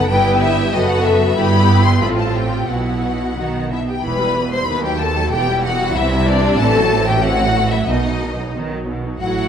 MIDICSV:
0, 0, Header, 1, 6, 480
1, 0, Start_track
1, 0, Key_signature, 1, "minor"
1, 0, Tempo, 643087
1, 71, Time_signature, 2, 2, 24, 8
1, 1512, Tempo, 671141
1, 2952, Tempo, 640342
1, 5352, Tempo, 653595
1, 6999, End_track
2, 0, Start_track
2, 0, Title_t, "Violin section"
2, 0, Program_c, 0, 48
2, 71, Note_on_c, 0, 79, 123
2, 303, Note_off_c, 0, 79, 0
2, 308, Note_on_c, 0, 76, 127
2, 540, Note_off_c, 0, 76, 0
2, 543, Note_on_c, 0, 75, 116
2, 663, Note_off_c, 0, 75, 0
2, 666, Note_on_c, 0, 78, 120
2, 777, Note_on_c, 0, 76, 111
2, 784, Note_off_c, 0, 78, 0
2, 1019, Note_on_c, 0, 83, 127
2, 1020, Note_off_c, 0, 76, 0
2, 1386, Note_on_c, 0, 84, 110
2, 1387, Note_off_c, 0, 83, 0
2, 1505, Note_on_c, 0, 83, 104
2, 1511, Note_off_c, 0, 84, 0
2, 1555, Note_off_c, 0, 83, 0
2, 1626, Note_on_c, 0, 81, 93
2, 1742, Note_on_c, 0, 79, 96
2, 1746, Note_off_c, 0, 81, 0
2, 1987, Note_off_c, 0, 79, 0
2, 1987, Note_on_c, 0, 78, 79
2, 2714, Note_on_c, 0, 76, 87
2, 2715, Note_off_c, 0, 78, 0
2, 2826, Note_off_c, 0, 76, 0
2, 2839, Note_on_c, 0, 79, 91
2, 2952, Note_off_c, 0, 79, 0
2, 2953, Note_on_c, 0, 83, 104
2, 3315, Note_on_c, 0, 84, 107
2, 3316, Note_off_c, 0, 83, 0
2, 3429, Note_on_c, 0, 83, 104
2, 3433, Note_off_c, 0, 84, 0
2, 3553, Note_off_c, 0, 83, 0
2, 3556, Note_on_c, 0, 79, 101
2, 3674, Note_off_c, 0, 79, 0
2, 3676, Note_on_c, 0, 81, 116
2, 3915, Note_on_c, 0, 79, 120
2, 3917, Note_off_c, 0, 81, 0
2, 4150, Note_off_c, 0, 79, 0
2, 4150, Note_on_c, 0, 78, 127
2, 4386, Note_off_c, 0, 78, 0
2, 4395, Note_on_c, 0, 76, 127
2, 4632, Note_off_c, 0, 76, 0
2, 4634, Note_on_c, 0, 74, 127
2, 4865, Note_on_c, 0, 81, 127
2, 4873, Note_off_c, 0, 74, 0
2, 5228, Note_off_c, 0, 81, 0
2, 5231, Note_on_c, 0, 79, 119
2, 5349, Note_on_c, 0, 78, 127
2, 5351, Note_off_c, 0, 79, 0
2, 5706, Note_on_c, 0, 76, 110
2, 5707, Note_off_c, 0, 78, 0
2, 5828, Note_off_c, 0, 76, 0
2, 5831, Note_on_c, 0, 75, 100
2, 6311, Note_off_c, 0, 75, 0
2, 6789, Note_on_c, 0, 78, 102
2, 6999, Note_off_c, 0, 78, 0
2, 6999, End_track
3, 0, Start_track
3, 0, Title_t, "Violin section"
3, 0, Program_c, 1, 48
3, 75, Note_on_c, 1, 71, 105
3, 78, Note_on_c, 1, 67, 100
3, 536, Note_off_c, 1, 71, 0
3, 545, Note_on_c, 1, 71, 91
3, 548, Note_on_c, 1, 69, 103
3, 549, Note_off_c, 1, 67, 0
3, 1009, Note_off_c, 1, 71, 0
3, 1018, Note_on_c, 1, 71, 98
3, 1024, Note_on_c, 1, 67, 104
3, 1025, Note_off_c, 1, 69, 0
3, 1500, Note_off_c, 1, 71, 0
3, 1503, Note_off_c, 1, 67, 0
3, 1510, Note_on_c, 1, 69, 80
3, 1511, Note_on_c, 1, 65, 85
3, 1750, Note_off_c, 1, 69, 0
3, 1751, Note_on_c, 1, 67, 71
3, 1990, Note_off_c, 1, 65, 0
3, 1991, Note_off_c, 1, 67, 0
3, 1994, Note_on_c, 1, 66, 75
3, 1996, Note_off_c, 1, 66, 0
3, 1996, Note_on_c, 1, 66, 75
3, 2466, Note_off_c, 1, 66, 0
3, 2475, Note_on_c, 1, 66, 59
3, 2476, Note_off_c, 1, 66, 0
3, 2476, Note_on_c, 1, 66, 61
3, 2712, Note_off_c, 1, 66, 0
3, 2724, Note_on_c, 1, 64, 69
3, 2770, Note_off_c, 1, 64, 0
3, 2840, Note_on_c, 1, 67, 76
3, 2886, Note_off_c, 1, 67, 0
3, 2954, Note_on_c, 1, 71, 102
3, 3308, Note_off_c, 1, 71, 0
3, 3316, Note_on_c, 1, 72, 91
3, 3364, Note_off_c, 1, 72, 0
3, 3434, Note_on_c, 1, 71, 112
3, 3553, Note_off_c, 1, 71, 0
3, 3555, Note_on_c, 1, 67, 93
3, 3670, Note_on_c, 1, 69, 100
3, 3674, Note_off_c, 1, 67, 0
3, 3907, Note_on_c, 1, 67, 109
3, 3914, Note_off_c, 1, 69, 0
3, 4149, Note_on_c, 1, 66, 109
3, 4150, Note_off_c, 1, 67, 0
3, 4382, Note_on_c, 1, 64, 104
3, 4385, Note_off_c, 1, 66, 0
3, 4626, Note_off_c, 1, 64, 0
3, 4626, Note_on_c, 1, 62, 112
3, 4864, Note_off_c, 1, 62, 0
3, 4870, Note_on_c, 1, 69, 127
3, 5231, Note_off_c, 1, 69, 0
3, 5234, Note_on_c, 1, 67, 104
3, 5351, Note_off_c, 1, 67, 0
3, 5354, Note_on_c, 1, 66, 110
3, 5704, Note_on_c, 1, 64, 92
3, 5710, Note_off_c, 1, 66, 0
3, 5827, Note_off_c, 1, 64, 0
3, 5836, Note_on_c, 1, 63, 92
3, 6304, Note_off_c, 1, 63, 0
3, 6797, Note_on_c, 1, 66, 97
3, 6999, Note_off_c, 1, 66, 0
3, 6999, End_track
4, 0, Start_track
4, 0, Title_t, "Viola section"
4, 0, Program_c, 2, 48
4, 74, Note_on_c, 2, 59, 100
4, 75, Note_on_c, 2, 64, 98
4, 537, Note_off_c, 2, 59, 0
4, 538, Note_off_c, 2, 64, 0
4, 548, Note_on_c, 2, 59, 89
4, 551, Note_on_c, 2, 66, 100
4, 1015, Note_off_c, 2, 59, 0
4, 1016, Note_off_c, 2, 66, 0
4, 1024, Note_on_c, 2, 64, 98
4, 1025, Note_on_c, 2, 59, 99
4, 1503, Note_off_c, 2, 59, 0
4, 1503, Note_off_c, 2, 64, 0
4, 1518, Note_on_c, 2, 65, 78
4, 1519, Note_on_c, 2, 60, 81
4, 1993, Note_on_c, 2, 59, 72
4, 1994, Note_off_c, 2, 65, 0
4, 1994, Note_on_c, 2, 64, 69
4, 1995, Note_off_c, 2, 60, 0
4, 2467, Note_off_c, 2, 59, 0
4, 2468, Note_off_c, 2, 64, 0
4, 2474, Note_on_c, 2, 63, 67
4, 2475, Note_on_c, 2, 59, 62
4, 2800, Note_off_c, 2, 59, 0
4, 2806, Note_off_c, 2, 63, 0
4, 2946, Note_on_c, 2, 59, 71
4, 2947, Note_on_c, 2, 52, 79
4, 3061, Note_off_c, 2, 59, 0
4, 3062, Note_off_c, 2, 52, 0
4, 3068, Note_on_c, 2, 55, 75
4, 3070, Note_on_c, 2, 64, 70
4, 3190, Note_on_c, 2, 52, 73
4, 3192, Note_off_c, 2, 55, 0
4, 3192, Note_off_c, 2, 64, 0
4, 3192, Note_on_c, 2, 59, 68
4, 3313, Note_off_c, 2, 52, 0
4, 3314, Note_off_c, 2, 59, 0
4, 3315, Note_on_c, 2, 55, 66
4, 3315, Note_on_c, 2, 64, 69
4, 3432, Note_on_c, 2, 51, 80
4, 3432, Note_on_c, 2, 59, 73
4, 3436, Note_off_c, 2, 55, 0
4, 3436, Note_off_c, 2, 64, 0
4, 3546, Note_off_c, 2, 51, 0
4, 3546, Note_off_c, 2, 59, 0
4, 3557, Note_on_c, 2, 54, 69
4, 3557, Note_on_c, 2, 57, 65
4, 3677, Note_off_c, 2, 54, 0
4, 3677, Note_off_c, 2, 57, 0
4, 3677, Note_on_c, 2, 51, 72
4, 3679, Note_on_c, 2, 59, 68
4, 3798, Note_off_c, 2, 51, 0
4, 3798, Note_off_c, 2, 59, 0
4, 3798, Note_on_c, 2, 54, 82
4, 3798, Note_on_c, 2, 57, 73
4, 3918, Note_off_c, 2, 54, 0
4, 3918, Note_off_c, 2, 57, 0
4, 3921, Note_on_c, 2, 52, 82
4, 3921, Note_on_c, 2, 59, 84
4, 4030, Note_off_c, 2, 52, 0
4, 4030, Note_off_c, 2, 59, 0
4, 4038, Note_on_c, 2, 55, 79
4, 4038, Note_on_c, 2, 64, 82
4, 4156, Note_off_c, 2, 55, 0
4, 4156, Note_off_c, 2, 64, 0
4, 4157, Note_on_c, 2, 59, 82
4, 4158, Note_on_c, 2, 52, 82
4, 4275, Note_off_c, 2, 59, 0
4, 4276, Note_off_c, 2, 52, 0
4, 4276, Note_on_c, 2, 64, 77
4, 4277, Note_on_c, 2, 55, 82
4, 4394, Note_off_c, 2, 55, 0
4, 4394, Note_off_c, 2, 64, 0
4, 4396, Note_on_c, 2, 60, 94
4, 4397, Note_on_c, 2, 52, 91
4, 4506, Note_off_c, 2, 52, 0
4, 4506, Note_off_c, 2, 60, 0
4, 4518, Note_on_c, 2, 55, 85
4, 4518, Note_on_c, 2, 64, 85
4, 4634, Note_off_c, 2, 55, 0
4, 4635, Note_off_c, 2, 64, 0
4, 4635, Note_on_c, 2, 52, 84
4, 4638, Note_on_c, 2, 60, 86
4, 4753, Note_off_c, 2, 52, 0
4, 4755, Note_off_c, 2, 60, 0
4, 4756, Note_on_c, 2, 64, 95
4, 4758, Note_on_c, 2, 55, 98
4, 4874, Note_off_c, 2, 64, 0
4, 4875, Note_off_c, 2, 55, 0
4, 4878, Note_on_c, 2, 52, 103
4, 4878, Note_on_c, 2, 60, 103
4, 4987, Note_off_c, 2, 52, 0
4, 4987, Note_off_c, 2, 60, 0
4, 5000, Note_on_c, 2, 54, 88
4, 5000, Note_on_c, 2, 57, 90
4, 5116, Note_off_c, 2, 54, 0
4, 5116, Note_off_c, 2, 57, 0
4, 5118, Note_on_c, 2, 52, 81
4, 5120, Note_on_c, 2, 60, 84
4, 5235, Note_off_c, 2, 52, 0
4, 5236, Note_off_c, 2, 60, 0
4, 5237, Note_on_c, 2, 54, 83
4, 5239, Note_on_c, 2, 57, 83
4, 5354, Note_on_c, 2, 52, 88
4, 5355, Note_off_c, 2, 54, 0
4, 5355, Note_off_c, 2, 57, 0
4, 5355, Note_on_c, 2, 60, 83
4, 5463, Note_off_c, 2, 52, 0
4, 5464, Note_off_c, 2, 60, 0
4, 5473, Note_on_c, 2, 54, 79
4, 5474, Note_on_c, 2, 57, 74
4, 5591, Note_off_c, 2, 54, 0
4, 5591, Note_off_c, 2, 57, 0
4, 5596, Note_on_c, 2, 52, 71
4, 5596, Note_on_c, 2, 60, 71
4, 5712, Note_off_c, 2, 52, 0
4, 5713, Note_off_c, 2, 60, 0
4, 5713, Note_on_c, 2, 54, 73
4, 5713, Note_on_c, 2, 57, 67
4, 5831, Note_off_c, 2, 54, 0
4, 5831, Note_off_c, 2, 57, 0
4, 5834, Note_on_c, 2, 51, 65
4, 5834, Note_on_c, 2, 59, 74
4, 5944, Note_off_c, 2, 51, 0
4, 5944, Note_off_c, 2, 59, 0
4, 5953, Note_on_c, 2, 54, 64
4, 5954, Note_on_c, 2, 63, 66
4, 6072, Note_off_c, 2, 54, 0
4, 6072, Note_off_c, 2, 63, 0
4, 6074, Note_on_c, 2, 59, 64
4, 6077, Note_on_c, 2, 51, 65
4, 6192, Note_off_c, 2, 59, 0
4, 6194, Note_off_c, 2, 51, 0
4, 6196, Note_on_c, 2, 54, 56
4, 6197, Note_on_c, 2, 63, 61
4, 6309, Note_on_c, 2, 59, 64
4, 6311, Note_on_c, 2, 51, 64
4, 6313, Note_off_c, 2, 54, 0
4, 6314, Note_off_c, 2, 63, 0
4, 6421, Note_off_c, 2, 59, 0
4, 6422, Note_off_c, 2, 51, 0
4, 6431, Note_on_c, 2, 54, 57
4, 6431, Note_on_c, 2, 63, 56
4, 6551, Note_off_c, 2, 63, 0
4, 6551, Note_on_c, 2, 51, 56
4, 6551, Note_on_c, 2, 59, 53
4, 6552, Note_off_c, 2, 54, 0
4, 6672, Note_off_c, 2, 51, 0
4, 6672, Note_off_c, 2, 59, 0
4, 6673, Note_on_c, 2, 54, 64
4, 6673, Note_on_c, 2, 63, 60
4, 6785, Note_off_c, 2, 54, 0
4, 6793, Note_off_c, 2, 63, 0
4, 6793, Note_on_c, 2, 54, 74
4, 6794, Note_on_c, 2, 64, 78
4, 6999, Note_off_c, 2, 54, 0
4, 6999, Note_off_c, 2, 64, 0
4, 6999, End_track
5, 0, Start_track
5, 0, Title_t, "Cello section"
5, 0, Program_c, 3, 48
5, 76, Note_on_c, 3, 43, 91
5, 538, Note_off_c, 3, 43, 0
5, 550, Note_on_c, 3, 42, 96
5, 1024, Note_on_c, 3, 43, 95
5, 1025, Note_off_c, 3, 42, 0
5, 1503, Note_off_c, 3, 43, 0
5, 1513, Note_on_c, 3, 45, 84
5, 1988, Note_on_c, 3, 47, 69
5, 1992, Note_off_c, 3, 45, 0
5, 2418, Note_off_c, 3, 47, 0
5, 2473, Note_on_c, 3, 51, 76
5, 2698, Note_off_c, 3, 51, 0
5, 2715, Note_on_c, 3, 47, 68
5, 2950, Note_on_c, 3, 40, 78
5, 2951, Note_off_c, 3, 47, 0
5, 3405, Note_off_c, 3, 40, 0
5, 3437, Note_on_c, 3, 39, 93
5, 3908, Note_off_c, 3, 39, 0
5, 3915, Note_on_c, 3, 40, 89
5, 4392, Note_on_c, 3, 48, 106
5, 4393, Note_off_c, 3, 40, 0
5, 4870, Note_on_c, 3, 45, 114
5, 4871, Note_off_c, 3, 48, 0
5, 5810, Note_off_c, 3, 45, 0
5, 5829, Note_on_c, 3, 47, 78
5, 6253, Note_off_c, 3, 47, 0
5, 6311, Note_on_c, 3, 51, 88
5, 6534, Note_off_c, 3, 51, 0
5, 6547, Note_on_c, 3, 47, 72
5, 6786, Note_off_c, 3, 47, 0
5, 6789, Note_on_c, 3, 45, 78
5, 6999, Note_off_c, 3, 45, 0
5, 6999, End_track
6, 0, Start_track
6, 0, Title_t, "Double bass section"
6, 0, Program_c, 4, 48
6, 72, Note_on_c, 4, 31, 105
6, 537, Note_off_c, 4, 31, 0
6, 544, Note_on_c, 4, 30, 90
6, 1023, Note_off_c, 4, 30, 0
6, 1023, Note_on_c, 4, 31, 104
6, 1502, Note_off_c, 4, 31, 0
6, 1511, Note_on_c, 4, 33, 86
6, 1989, Note_on_c, 4, 35, 73
6, 1991, Note_off_c, 4, 33, 0
6, 2790, Note_off_c, 4, 35, 0
6, 2950, Note_on_c, 4, 28, 88
6, 3405, Note_off_c, 4, 28, 0
6, 3435, Note_on_c, 4, 39, 91
6, 3907, Note_off_c, 4, 39, 0
6, 3917, Note_on_c, 4, 28, 99
6, 4391, Note_on_c, 4, 36, 113
6, 4393, Note_off_c, 4, 28, 0
6, 4869, Note_on_c, 4, 33, 122
6, 4870, Note_off_c, 4, 36, 0
6, 5809, Note_off_c, 4, 33, 0
6, 5827, Note_on_c, 4, 35, 86
6, 6626, Note_off_c, 4, 35, 0
6, 6790, Note_on_c, 4, 33, 82
6, 6999, Note_off_c, 4, 33, 0
6, 6999, End_track
0, 0, End_of_file